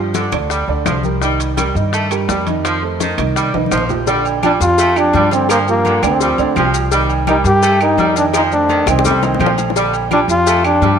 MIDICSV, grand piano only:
0, 0, Header, 1, 2, 480
1, 0, Start_track
1, 0, Key_signature, -2, "major"
1, 0, Tempo, 355872
1, 1644, Time_signature, 4, 2, 24, 8
1, 14825, End_track
2, 0, Start_track
2, 0, Title_t, "Grand piano"
2, 0, Program_c, 0, 0
2, 0, Note_on_c, 0, 53, 71
2, 0, Note_on_c, 0, 65, 72
2, 0, Note_on_c, 0, 67, 71
2, 355, Note_off_c, 0, 53, 0
2, 357, Note_off_c, 0, 65, 0
2, 359, Note_off_c, 0, 67, 0
2, 443, Note_on_c, 0, 50, 82
2, 448, Note_on_c, 0, 62, 81
2, 454, Note_on_c, 0, 74, 81
2, 837, Note_off_c, 0, 50, 0
2, 840, Note_off_c, 0, 62, 0
2, 844, Note_off_c, 0, 74, 0
2, 922, Note_on_c, 0, 50, 90
2, 927, Note_on_c, 0, 62, 91
2, 931, Note_on_c, 0, 74, 90
2, 1317, Note_off_c, 0, 50, 0
2, 1320, Note_off_c, 0, 62, 0
2, 1323, Note_off_c, 0, 74, 0
2, 1401, Note_on_c, 0, 55, 67
2, 1407, Note_on_c, 0, 67, 74
2, 1414, Note_on_c, 0, 70, 67
2, 1600, Note_off_c, 0, 55, 0
2, 1603, Note_off_c, 0, 67, 0
2, 1607, Note_off_c, 0, 70, 0
2, 1641, Note_on_c, 0, 51, 77
2, 1644, Note_on_c, 0, 63, 79
2, 1649, Note_on_c, 0, 75, 81
2, 2037, Note_off_c, 0, 51, 0
2, 2039, Note_off_c, 0, 63, 0
2, 2042, Note_off_c, 0, 75, 0
2, 2127, Note_on_c, 0, 55, 66
2, 2132, Note_on_c, 0, 67, 73
2, 2138, Note_on_c, 0, 70, 68
2, 2324, Note_off_c, 0, 55, 0
2, 2327, Note_off_c, 0, 67, 0
2, 2331, Note_off_c, 0, 70, 0
2, 2367, Note_on_c, 0, 51, 82
2, 2373, Note_on_c, 0, 63, 82
2, 2379, Note_on_c, 0, 75, 79
2, 2762, Note_off_c, 0, 51, 0
2, 2765, Note_off_c, 0, 63, 0
2, 2769, Note_off_c, 0, 75, 0
2, 2843, Note_on_c, 0, 55, 80
2, 2847, Note_on_c, 0, 67, 80
2, 2851, Note_on_c, 0, 70, 75
2, 3240, Note_off_c, 0, 55, 0
2, 3243, Note_off_c, 0, 67, 0
2, 3245, Note_off_c, 0, 70, 0
2, 3326, Note_on_c, 0, 51, 82
2, 3329, Note_on_c, 0, 63, 78
2, 3337, Note_on_c, 0, 75, 80
2, 3723, Note_off_c, 0, 51, 0
2, 3724, Note_off_c, 0, 63, 0
2, 3728, Note_off_c, 0, 75, 0
2, 3806, Note_on_c, 0, 57, 68
2, 3809, Note_on_c, 0, 69, 73
2, 3815, Note_on_c, 0, 72, 68
2, 4203, Note_off_c, 0, 57, 0
2, 4205, Note_off_c, 0, 69, 0
2, 4208, Note_off_c, 0, 72, 0
2, 4290, Note_on_c, 0, 51, 84
2, 4293, Note_on_c, 0, 63, 78
2, 4297, Note_on_c, 0, 75, 78
2, 4685, Note_off_c, 0, 51, 0
2, 4687, Note_off_c, 0, 63, 0
2, 4690, Note_off_c, 0, 75, 0
2, 4768, Note_on_c, 0, 51, 84
2, 4775, Note_on_c, 0, 63, 86
2, 4777, Note_on_c, 0, 75, 84
2, 5164, Note_off_c, 0, 51, 0
2, 5168, Note_off_c, 0, 63, 0
2, 5170, Note_off_c, 0, 75, 0
2, 5250, Note_on_c, 0, 53, 66
2, 5252, Note_on_c, 0, 65, 73
2, 5261, Note_on_c, 0, 67, 71
2, 5448, Note_off_c, 0, 53, 0
2, 5450, Note_off_c, 0, 65, 0
2, 5455, Note_off_c, 0, 67, 0
2, 5492, Note_on_c, 0, 50, 88
2, 5492, Note_on_c, 0, 62, 81
2, 5499, Note_on_c, 0, 74, 84
2, 5886, Note_off_c, 0, 50, 0
2, 5887, Note_off_c, 0, 62, 0
2, 5891, Note_off_c, 0, 74, 0
2, 5971, Note_on_c, 0, 53, 74
2, 5975, Note_on_c, 0, 65, 78
2, 5980, Note_on_c, 0, 67, 74
2, 6170, Note_off_c, 0, 53, 0
2, 6172, Note_off_c, 0, 65, 0
2, 6175, Note_off_c, 0, 67, 0
2, 6212, Note_on_c, 0, 53, 82
2, 6214, Note_on_c, 0, 65, 75
2, 6219, Note_on_c, 0, 67, 79
2, 6607, Note_off_c, 0, 53, 0
2, 6608, Note_off_c, 0, 65, 0
2, 6610, Note_off_c, 0, 67, 0
2, 6690, Note_on_c, 0, 53, 84
2, 6692, Note_on_c, 0, 65, 80
2, 6698, Note_on_c, 0, 67, 84
2, 7085, Note_off_c, 0, 53, 0
2, 7087, Note_off_c, 0, 65, 0
2, 7090, Note_off_c, 0, 67, 0
2, 7168, Note_on_c, 0, 50, 87
2, 7176, Note_on_c, 0, 62, 85
2, 7178, Note_on_c, 0, 74, 80
2, 7564, Note_off_c, 0, 50, 0
2, 7569, Note_off_c, 0, 62, 0
2, 7570, Note_off_c, 0, 74, 0
2, 7655, Note_on_c, 0, 53, 77
2, 7659, Note_on_c, 0, 65, 79
2, 7661, Note_on_c, 0, 67, 80
2, 8048, Note_off_c, 0, 53, 0
2, 8050, Note_off_c, 0, 65, 0
2, 8051, Note_off_c, 0, 67, 0
2, 8132, Note_on_c, 0, 50, 91
2, 8140, Note_on_c, 0, 62, 96
2, 8140, Note_on_c, 0, 74, 92
2, 8329, Note_off_c, 0, 50, 0
2, 8334, Note_off_c, 0, 62, 0
2, 8334, Note_off_c, 0, 74, 0
2, 8383, Note_on_c, 0, 53, 75
2, 8384, Note_on_c, 0, 65, 77
2, 8388, Note_on_c, 0, 67, 81
2, 8575, Note_off_c, 0, 53, 0
2, 8576, Note_off_c, 0, 65, 0
2, 8579, Note_off_c, 0, 67, 0
2, 8617, Note_on_c, 0, 50, 92
2, 8620, Note_on_c, 0, 62, 92
2, 8622, Note_on_c, 0, 74, 98
2, 8812, Note_off_c, 0, 50, 0
2, 8813, Note_off_c, 0, 62, 0
2, 8815, Note_off_c, 0, 74, 0
2, 8851, Note_on_c, 0, 53, 75
2, 8858, Note_on_c, 0, 65, 75
2, 8863, Note_on_c, 0, 67, 76
2, 9244, Note_off_c, 0, 53, 0
2, 9248, Note_off_c, 0, 65, 0
2, 9251, Note_off_c, 0, 67, 0
2, 9334, Note_on_c, 0, 51, 84
2, 9342, Note_on_c, 0, 63, 81
2, 9343, Note_on_c, 0, 75, 83
2, 9726, Note_off_c, 0, 51, 0
2, 9731, Note_off_c, 0, 63, 0
2, 9731, Note_off_c, 0, 75, 0
2, 9820, Note_on_c, 0, 55, 76
2, 9824, Note_on_c, 0, 67, 76
2, 9826, Note_on_c, 0, 70, 78
2, 10012, Note_off_c, 0, 55, 0
2, 10015, Note_off_c, 0, 67, 0
2, 10016, Note_off_c, 0, 70, 0
2, 10055, Note_on_c, 0, 55, 84
2, 10057, Note_on_c, 0, 67, 80
2, 10063, Note_on_c, 0, 70, 81
2, 10446, Note_off_c, 0, 55, 0
2, 10447, Note_off_c, 0, 67, 0
2, 10450, Note_off_c, 0, 70, 0
2, 10534, Note_on_c, 0, 55, 80
2, 10538, Note_on_c, 0, 67, 80
2, 10540, Note_on_c, 0, 70, 83
2, 10924, Note_off_c, 0, 55, 0
2, 10927, Note_off_c, 0, 67, 0
2, 10928, Note_off_c, 0, 70, 0
2, 11005, Note_on_c, 0, 51, 84
2, 11009, Note_on_c, 0, 63, 84
2, 11016, Note_on_c, 0, 75, 94
2, 11399, Note_off_c, 0, 51, 0
2, 11401, Note_off_c, 0, 63, 0
2, 11405, Note_off_c, 0, 75, 0
2, 11487, Note_on_c, 0, 57, 80
2, 11493, Note_on_c, 0, 69, 72
2, 11501, Note_on_c, 0, 72, 78
2, 11879, Note_off_c, 0, 57, 0
2, 11883, Note_off_c, 0, 69, 0
2, 11887, Note_off_c, 0, 72, 0
2, 11968, Note_on_c, 0, 51, 87
2, 11970, Note_on_c, 0, 63, 87
2, 11976, Note_on_c, 0, 75, 86
2, 12163, Note_off_c, 0, 51, 0
2, 12164, Note_off_c, 0, 63, 0
2, 12168, Note_off_c, 0, 75, 0
2, 12208, Note_on_c, 0, 57, 75
2, 12209, Note_on_c, 0, 69, 75
2, 12216, Note_on_c, 0, 72, 81
2, 12403, Note_off_c, 0, 57, 0
2, 12403, Note_off_c, 0, 69, 0
2, 12407, Note_off_c, 0, 72, 0
2, 12448, Note_on_c, 0, 51, 91
2, 12453, Note_on_c, 0, 63, 97
2, 12460, Note_on_c, 0, 75, 92
2, 12642, Note_off_c, 0, 51, 0
2, 12645, Note_off_c, 0, 63, 0
2, 12649, Note_off_c, 0, 75, 0
2, 12692, Note_on_c, 0, 57, 72
2, 12695, Note_on_c, 0, 69, 74
2, 12698, Note_on_c, 0, 72, 73
2, 13080, Note_off_c, 0, 57, 0
2, 13082, Note_off_c, 0, 69, 0
2, 13084, Note_off_c, 0, 72, 0
2, 13160, Note_on_c, 0, 50, 81
2, 13165, Note_on_c, 0, 62, 77
2, 13170, Note_on_c, 0, 74, 80
2, 13553, Note_off_c, 0, 50, 0
2, 13556, Note_off_c, 0, 62, 0
2, 13559, Note_off_c, 0, 74, 0
2, 13633, Note_on_c, 0, 53, 75
2, 13639, Note_on_c, 0, 65, 76
2, 13643, Note_on_c, 0, 67, 71
2, 13832, Note_off_c, 0, 53, 0
2, 13836, Note_off_c, 0, 65, 0
2, 13837, Note_off_c, 0, 67, 0
2, 13872, Note_on_c, 0, 53, 79
2, 13876, Note_on_c, 0, 65, 75
2, 13880, Note_on_c, 0, 67, 80
2, 14267, Note_off_c, 0, 53, 0
2, 14269, Note_off_c, 0, 65, 0
2, 14272, Note_off_c, 0, 67, 0
2, 14354, Note_on_c, 0, 53, 80
2, 14356, Note_on_c, 0, 65, 84
2, 14362, Note_on_c, 0, 67, 86
2, 14747, Note_off_c, 0, 53, 0
2, 14748, Note_off_c, 0, 65, 0
2, 14752, Note_off_c, 0, 67, 0
2, 14825, End_track
0, 0, End_of_file